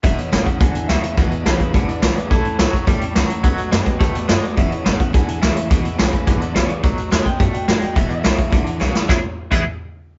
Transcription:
<<
  \new Staff \with { instrumentName = "Clean electric guitar" } { \time 4/4 \key e \major \tempo 4 = 212 e''8 cis''4 fis''8 gis''8 gis''8 e''4 | r4 <gis' b'>8 <gis' b'>8 <gis' b'>8 <b' d''>8 <b' d''>8 <b' d''>8 | a'4 r2. | r4 <g' b'>8 <g' b'>8 <g' b'>8 <b' d''>8 <b' d''>8 <b' d''>8 |
e''8 cis''4 fis''8 gis''8 gis''8 e''4 | r4 <gis' b'>8 <gis' b'>8 <gis' b'>8 <b' d''>8 <b' d''>8 <b' d''>8 | r4. g''8 d''8 g''8 d''8 g''8 | e''8 e''2 r4. |
e''8 r4 e''8 r2 | }
  \new Staff \with { instrumentName = "Steel-string acoustic guitar" } { \time 4/4 \key e \major <e, b, e gis b e'>8 <e gis b e'>8 <e, b, e gis b e'>8 <e gis b e'>8 <e gis b e'>8 <e gis b e'>8 <e, b, e gis b e'>8 <e gis b e'>8 | <e, b, e gis b e'>8 <e gis b e'>8 <e, b, e gis b e'>8 <e gis b e'>8 <e gis b e'>8 <e gis b e'>8 <e, b, e gis b e'>8 <e gis b e'>8 | <a, e a cis' e'>8 <a cis' e'>8 <a, e a cis' e'>8 <a cis' e'>8 <e a cis' e'>8 <a cis' e'>8 <a, e a cis' e'>8 <a cis' e'>8 | <b, dis a b fis'>8 <a b fis'>8 <b, dis a b fis'>8 <a b fis'>8 <dis a b fis'>8 <a b fis'>8 <b, dis a b fis'>8 <a b fis'>8 |
<e, b, e gis b e'>8 <e gis b e'>8 <e, b, e gis b e'>8 <e gis b e'>8 <e gis b e'>8 <e gis b e'>8 <e, b, e gis b e'>8 <e gis b e'>8 | <e, b, e gis b e'>8 <e gis b e'>8 <e, b, e gis b e'>8 <e gis b e'>8 <e gis b e'>8 <e gis b e'>8 <e, b, e gis b e'>8 <e gis b e'>8 | <b, dis a b fis'>8 <a b fis'>8 <b, dis a b fis'>8 <a b fis'>8 <dis a b fis'>8 <a b fis'>8 <b, dis a b fis'>8 <a b fis'>8 | <e, b, e gis b e'>8 <e gis b e'>8 <e, b, e gis b e'>8 <e gis b e'>8 <e gis b e'>8 <e gis b e'>8 <e, b, e gis b e'>8 <e gis b e'>8 |
<e, b, e gis b e'>8 r4 <e, b, e gis b e'>8 r2 | }
  \new Staff \with { instrumentName = "Clean electric guitar" } { \clef bass \time 4/4 \key e \major <e, b,>4 <e, cis>4 <e, d>4 <e, cis>4 | <e, b,>4 <e, cis>4 <e, d>4 <e, cis>4 | <a, e>4 <a, fis>4 <a, g>4 <a, fis>4 | <b, fis>4 <b, gis>4 <b, a>4 <b, gis>4 |
<e, b,>4 <e, cis>4 <e, d>4 <e, cis>4 | <e, b,>4 <e, cis>4 <e, d>4 <e, cis>4 | <b, fis>4 <b, gis>4 <b, a>4 <b, gis>4 | <e, b,>4 <e, cis>4 <e, d>4 <e, cis>4 |
<e gis b e' gis'>8 r4 <e gis b e' gis'>8 r2 | }
  \new Staff \with { instrumentName = "Upright bass" } { \clef bass \time 4/4 \key e \major e,,8 r8 gis,,8 r8 b,,8 r8 cis,8 r8 | cis,8 r8 b,,8 r8 gis,,8 r8 b,,8 r8 | a,,8 r8 cis,8 r8 e,8 r8 cis,8 r8 | b,,8 r8 fis,8 r8 dis,8 r8 fis,8 r8 |
e,,8 r8 gis,,8 r8 b,,8 r8 cis,8 r8 | cis,8 r8 b,,8 r8 gis,,8 r8 ais,,8 r8 | b,,8 r8 dis,8 r8 fis,8 r8 a,8 r8 | e,,8 r8 b,,8 r8 gis,,8 r8 b,,8 r8 |
e,,8 r4 e,,8 r2 | }
  \new DrumStaff \with { instrumentName = "Drums" } \drummode { \time 4/4 <hh bd>8 hh8 <hh sn>8 <hh bd>8 <hh bd>8 hh8 <hh sn>8 hh8 | <hh bd>8 hh8 <hh sn>8 <hh bd>8 <hh bd>8 hh8 <hh sn>8 hh8 | <hh bd>8 hh8 <hh sn>8 <hh bd>8 <hh bd>8 hh8 <hh sn>8 hh8 | <hh bd>8 hh8 <hh sn>8 <hh bd>8 <hh bd>8 hh8 <hh sn>8 hh8 |
<hh bd>8 hh8 <hh sn>8 <hh bd>8 <hh bd>8 hh8 <hh sn>8 hh8 | <hh bd>8 hh8 <hh sn>8 <hh bd>8 <hh bd>8 hh8 <hh sn>8 hh8 | <hh bd>8 hh8 <hh sn>8 <hh bd>8 <hh bd>8 hh8 <hh sn>8 hh8 | <hh bd>8 hh8 <hh sn>8 <hh bd>8 <hh bd>8 hh8 sn8 sn8 |
<bd sn>4 r8 <cymc bd>8 r4 r4 | }
>>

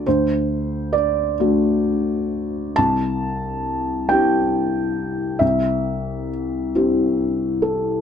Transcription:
\new Staff \with { instrumentName = "Felt piano" } { \time 6/8 \key c \lydian \tempo 4. = 45 << { c''4 d''2 | a''4. g''4. | e''4 r4. a'8 | } \\ { d,4. <a d' fis'>4. | c,4. <c' e' g'>4. | c,4. <c' e' g'>4. | } >> }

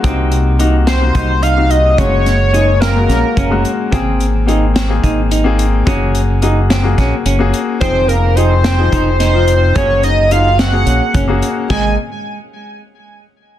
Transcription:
<<
  \new Staff \with { instrumentName = "Analog synth lead" } { \time 7/8 \key aes \mixolydian \tempo 4 = 108 r4. c''4 f''8 ees''8 | des''4. bes'4. r8 | r2. r8 | r2. r8 |
c''8 bes'8 c''4. c''4 | des''8 ees''8 f''8 ges''4 r4 | aes''8 r2. | }
  \new Staff \with { instrumentName = "Grand piano" } { \time 7/8 \key aes \mixolydian <c bes ees' ges'>4 <c bes ees' ges'>8. <c bes ees' ges'>4 <c bes ees' ges'>8. | <aes bes ges'>4 <aes bes aes'>8. <aes bes ges'>4 <aes bes ges'>8. | <bes c' aes'>4 <bes c' aes'>8. <bes c' aes'>4 <bes c' aes'>8. | <bes ges' aes'>4 <bes ges' aes'>8. <bes ges' aes'>4 <bes ges' aes'>8. |
<f ees' aes'>4 <f ees' aes'>8. <f ees' aes'>4 <f ees' f'>8. | <bes ges' aes'>4 <bes ges' aes'>8. <bes ges' aes'>4 <bes ges' aes'>8. | <bes c' aes'>8 r2. | }
  \new Staff \with { instrumentName = "Clean electric guitar" } { \time 7/8 \key aes \mixolydian c'4 ees'8 c'8 ees'8 ees'4 | des'4 ees'8 c'8 des'8 des'4 | c'4 ees'8 c'8 ees'8 ees'4 | des'4 ees'8 c'8 des'8 des'4 |
c'4 ees'8 c'8 ees'8 ees'4 | des'4 ees'8 c'8 des'8 des'4 | aes8 r2. | }
  \new Staff \with { instrumentName = "Trombone" } { \time 7/8 \key aes \mixolydian r2. r8 | r4. bes4. r8 | r2. r8 | r2. r8 |
c'8 bes8 c'4. c'4 | des'8 ees'8 f'8 ges'4 r4 | aes8 r2. | }
  \new Staff \with { instrumentName = "Fingered electric bass" } { \clef bass \time 7/8 \key aes \mixolydian c,2 c,4. | ges,,2 bes,,16 r16 ges,,8 r8 | aes,,2 aes,,4. | ges,,2 bes,,16 r16 ges,,8 r8 |
f,,2 f,,4. | ges,,2 bes,,16 r16 ges,,8 r8 | aes,,8 r2. | }
  \new DrumStaff \with { instrumentName = "Drums" } \drummode { \time 7/8 <hh bd>8 hh8 hh8 <hh sn>8 <hh bd>8 hh8 hh8 | <hh bd>8 <hh sn>8 hh8 <hh sn>8 <hh sn>8 <hh bd>8 hh8 | <hh bd>8 hh8 hh8 <hh sn>8 <hh bd>8 hh8 hh8 | <hh bd>8 hh8 hh8 <hh sn>8 <hh bd sn>8 hh8 hh8 |
<hh bd>8 hh8 hh8 <hh sn>8 <hh bd>8 <hh sn>8 hh8 | <hh bd>8 hh8 hh8 <hh sn>8 hh8 <hh bd>8 hh8 | <cymc bd>4. r4 r4 | }
>>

